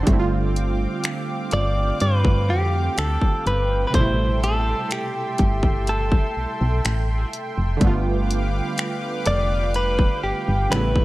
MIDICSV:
0, 0, Header, 1, 6, 480
1, 0, Start_track
1, 0, Tempo, 967742
1, 34, Time_signature, 4, 2, 24, 8
1, 5480, End_track
2, 0, Start_track
2, 0, Title_t, "Analog synth pad"
2, 0, Program_c, 0, 89
2, 0, Note_on_c, 0, 60, 81
2, 33, Note_on_c, 0, 86, 90
2, 34, Note_on_c, 0, 79, 75
2, 35, Note_on_c, 0, 77, 74
2, 1933, Note_off_c, 0, 60, 0
2, 1934, Note_off_c, 0, 86, 0
2, 1936, Note_off_c, 0, 77, 0
2, 1957, Note_on_c, 0, 69, 76
2, 1957, Note_on_c, 0, 76, 71
2, 1959, Note_on_c, 0, 84, 86
2, 3856, Note_off_c, 0, 76, 0
2, 3857, Note_off_c, 0, 69, 0
2, 3857, Note_off_c, 0, 84, 0
2, 3873, Note_on_c, 0, 77, 74
2, 3874, Note_on_c, 0, 71, 75
2, 3874, Note_on_c, 0, 86, 90
2, 5299, Note_off_c, 0, 77, 0
2, 5300, Note_off_c, 0, 71, 0
2, 5300, Note_off_c, 0, 86, 0
2, 5316, Note_on_c, 0, 69, 72
2, 5316, Note_on_c, 0, 76, 65
2, 5317, Note_on_c, 0, 85, 80
2, 5480, Note_off_c, 0, 69, 0
2, 5480, Note_off_c, 0, 76, 0
2, 5480, Note_off_c, 0, 79, 0
2, 5480, Note_off_c, 0, 85, 0
2, 5480, End_track
3, 0, Start_track
3, 0, Title_t, "Clean electric guitar"
3, 0, Program_c, 1, 27
3, 761, Note_on_c, 1, 74, 108
3, 981, Note_off_c, 1, 74, 0
3, 1000, Note_on_c, 1, 71, 98
3, 1240, Note_on_c, 1, 67, 89
3, 1244, Note_off_c, 1, 71, 0
3, 1481, Note_on_c, 1, 69, 87
3, 1484, Note_off_c, 1, 67, 0
3, 1720, Note_off_c, 1, 69, 0
3, 1722, Note_on_c, 1, 71, 87
3, 1915, Note_off_c, 1, 71, 0
3, 1921, Note_on_c, 1, 71, 69
3, 1955, Note_off_c, 1, 71, 0
3, 1959, Note_on_c, 1, 72, 93
3, 2180, Note_off_c, 1, 72, 0
3, 2201, Note_on_c, 1, 69, 83
3, 2441, Note_on_c, 1, 67, 80
3, 2445, Note_off_c, 1, 69, 0
3, 2923, Note_on_c, 1, 69, 76
3, 2932, Note_off_c, 1, 67, 0
3, 3619, Note_off_c, 1, 69, 0
3, 4599, Note_on_c, 1, 74, 106
3, 4838, Note_off_c, 1, 74, 0
3, 4840, Note_on_c, 1, 71, 99
3, 5061, Note_off_c, 1, 71, 0
3, 5076, Note_on_c, 1, 67, 84
3, 5315, Note_on_c, 1, 71, 101
3, 5322, Note_off_c, 1, 67, 0
3, 5480, Note_off_c, 1, 71, 0
3, 5480, End_track
4, 0, Start_track
4, 0, Title_t, "Synth keys"
4, 0, Program_c, 2, 88
4, 0, Control_c, 2, 64, 127
4, 14, Note_on_c, 2, 50, 79
4, 27, Note_on_c, 2, 55, 70
4, 39, Control_c, 2, 64, 0
4, 39, Note_on_c, 2, 57, 69
4, 52, Note_on_c, 2, 60, 66
4, 64, Note_on_c, 2, 64, 67
4, 81, Note_off_c, 2, 64, 0
4, 96, Note_on_c, 2, 65, 84
4, 119, Control_c, 2, 64, 127
4, 1925, Note_off_c, 2, 50, 0
4, 1931, Note_off_c, 2, 55, 0
4, 1934, Note_on_c, 2, 48, 61
4, 1937, Note_off_c, 2, 57, 0
4, 1943, Note_off_c, 2, 60, 0
4, 1947, Note_on_c, 2, 55, 54
4, 1960, Control_c, 2, 64, 0
4, 1960, Note_on_c, 2, 57, 58
4, 1965, Note_off_c, 2, 65, 0
4, 1972, Note_on_c, 2, 47, 56
4, 1985, Note_on_c, 2, 64, 66
4, 2048, Control_c, 2, 64, 127
4, 3844, Note_off_c, 2, 48, 0
4, 3851, Note_off_c, 2, 55, 0
4, 3854, Note_on_c, 2, 50, 72
4, 3857, Note_off_c, 2, 57, 0
4, 3863, Note_off_c, 2, 47, 0
4, 3866, Note_on_c, 2, 55, 65
4, 3870, Note_off_c, 2, 64, 0
4, 3878, Note_on_c, 2, 57, 68
4, 3881, Control_c, 2, 64, 0
4, 3891, Note_on_c, 2, 59, 70
4, 3903, Note_on_c, 2, 65, 80
4, 3981, Control_c, 2, 64, 127
4, 5284, Note_off_c, 2, 50, 0
4, 5290, Note_off_c, 2, 55, 0
4, 5296, Note_off_c, 2, 57, 0
4, 5303, Note_off_c, 2, 59, 0
4, 5307, Note_on_c, 2, 49, 66
4, 5309, Note_off_c, 2, 65, 0
4, 5314, Note_on_c, 2, 55, 60
4, 5320, Note_on_c, 2, 57, 59
4, 5321, Control_c, 2, 64, 0
4, 5326, Note_on_c, 2, 59, 60
4, 5332, Note_on_c, 2, 64, 71
4, 5419, Control_c, 2, 64, 127
4, 5480, Note_off_c, 2, 49, 0
4, 5480, Note_off_c, 2, 55, 0
4, 5480, Note_off_c, 2, 57, 0
4, 5480, Note_off_c, 2, 59, 0
4, 5480, Note_off_c, 2, 64, 0
4, 5480, End_track
5, 0, Start_track
5, 0, Title_t, "FM bass"
5, 0, Program_c, 3, 39
5, 35, Note_on_c, 3, 31, 100
5, 430, Note_off_c, 3, 31, 0
5, 757, Note_on_c, 3, 31, 94
5, 954, Note_off_c, 3, 31, 0
5, 998, Note_on_c, 3, 43, 106
5, 1237, Note_on_c, 3, 41, 96
5, 1244, Note_off_c, 3, 43, 0
5, 1434, Note_off_c, 3, 41, 0
5, 1477, Note_on_c, 3, 38, 94
5, 1575, Note_off_c, 3, 38, 0
5, 1716, Note_on_c, 3, 31, 90
5, 1913, Note_off_c, 3, 31, 0
5, 1955, Note_on_c, 3, 33, 102
5, 2350, Note_off_c, 3, 33, 0
5, 2675, Note_on_c, 3, 31, 95
5, 3070, Note_off_c, 3, 31, 0
5, 3158, Note_on_c, 3, 35, 49
5, 3205, Note_off_c, 3, 35, 0
5, 3278, Note_on_c, 3, 35, 96
5, 3375, Note_off_c, 3, 35, 0
5, 3398, Note_on_c, 3, 33, 90
5, 3594, Note_off_c, 3, 33, 0
5, 3757, Note_on_c, 3, 29, 82
5, 3855, Note_off_c, 3, 29, 0
5, 3875, Note_on_c, 3, 31, 105
5, 4270, Note_off_c, 3, 31, 0
5, 4596, Note_on_c, 3, 29, 86
5, 4991, Note_off_c, 3, 29, 0
5, 5077, Note_on_c, 3, 31, 49
5, 5124, Note_off_c, 3, 31, 0
5, 5198, Note_on_c, 3, 31, 98
5, 5295, Note_off_c, 3, 31, 0
5, 5318, Note_on_c, 3, 33, 108
5, 5480, Note_off_c, 3, 33, 0
5, 5480, End_track
6, 0, Start_track
6, 0, Title_t, "Drums"
6, 33, Note_on_c, 9, 42, 64
6, 34, Note_on_c, 9, 36, 101
6, 83, Note_off_c, 9, 42, 0
6, 84, Note_off_c, 9, 36, 0
6, 279, Note_on_c, 9, 42, 63
6, 329, Note_off_c, 9, 42, 0
6, 514, Note_on_c, 9, 42, 72
6, 521, Note_on_c, 9, 26, 102
6, 564, Note_off_c, 9, 42, 0
6, 571, Note_off_c, 9, 26, 0
6, 750, Note_on_c, 9, 42, 75
6, 800, Note_off_c, 9, 42, 0
6, 994, Note_on_c, 9, 42, 61
6, 1043, Note_off_c, 9, 42, 0
6, 1114, Note_on_c, 9, 36, 100
6, 1164, Note_off_c, 9, 36, 0
6, 1476, Note_on_c, 9, 42, 75
6, 1481, Note_on_c, 9, 26, 118
6, 1526, Note_off_c, 9, 42, 0
6, 1530, Note_off_c, 9, 26, 0
6, 1594, Note_on_c, 9, 36, 90
6, 1644, Note_off_c, 9, 36, 0
6, 1719, Note_on_c, 9, 42, 61
6, 1769, Note_off_c, 9, 42, 0
6, 1954, Note_on_c, 9, 36, 108
6, 1954, Note_on_c, 9, 42, 64
6, 2004, Note_off_c, 9, 36, 0
6, 2004, Note_off_c, 9, 42, 0
6, 2200, Note_on_c, 9, 42, 66
6, 2250, Note_off_c, 9, 42, 0
6, 2434, Note_on_c, 9, 42, 73
6, 2441, Note_on_c, 9, 26, 104
6, 2484, Note_off_c, 9, 42, 0
6, 2491, Note_off_c, 9, 26, 0
6, 2670, Note_on_c, 9, 42, 70
6, 2674, Note_on_c, 9, 36, 94
6, 2719, Note_off_c, 9, 42, 0
6, 2724, Note_off_c, 9, 36, 0
6, 2792, Note_on_c, 9, 36, 92
6, 2841, Note_off_c, 9, 36, 0
6, 2913, Note_on_c, 9, 42, 63
6, 2963, Note_off_c, 9, 42, 0
6, 3034, Note_on_c, 9, 36, 98
6, 3083, Note_off_c, 9, 36, 0
6, 3396, Note_on_c, 9, 42, 75
6, 3401, Note_on_c, 9, 26, 116
6, 3446, Note_off_c, 9, 42, 0
6, 3450, Note_off_c, 9, 26, 0
6, 3638, Note_on_c, 9, 42, 58
6, 3687, Note_off_c, 9, 42, 0
6, 3873, Note_on_c, 9, 42, 66
6, 3874, Note_on_c, 9, 36, 103
6, 3923, Note_off_c, 9, 42, 0
6, 3924, Note_off_c, 9, 36, 0
6, 4120, Note_on_c, 9, 42, 64
6, 4169, Note_off_c, 9, 42, 0
6, 4354, Note_on_c, 9, 42, 77
6, 4361, Note_on_c, 9, 26, 95
6, 4403, Note_off_c, 9, 42, 0
6, 4410, Note_off_c, 9, 26, 0
6, 4591, Note_on_c, 9, 42, 71
6, 4640, Note_off_c, 9, 42, 0
6, 4833, Note_on_c, 9, 42, 61
6, 4882, Note_off_c, 9, 42, 0
6, 4953, Note_on_c, 9, 36, 93
6, 5003, Note_off_c, 9, 36, 0
6, 5316, Note_on_c, 9, 42, 76
6, 5320, Note_on_c, 9, 26, 121
6, 5366, Note_off_c, 9, 42, 0
6, 5370, Note_off_c, 9, 26, 0
6, 5434, Note_on_c, 9, 36, 94
6, 5480, Note_off_c, 9, 36, 0
6, 5480, End_track
0, 0, End_of_file